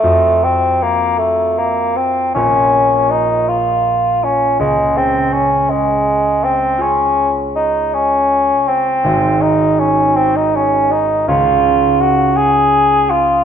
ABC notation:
X:1
M:12/8
L:1/16
Q:3/8=54
K:Db
V:1 name="Harp"
[F,,FGce]12 [B,,,FBd]12 | D,,12 [FAd]12 | [A,,,GAe]12 [D,,FAd]12 |]
V:2 name="Bassoon"
=A,2 C2 B,2 A,2 B,2 C2 D4 E2 F4 D2 | A,2 C2 D2 A,4 C2 D4 E2 D4 C2- | C2 E2 D2 C E D2 E2 F4 G2 A4 F2 |]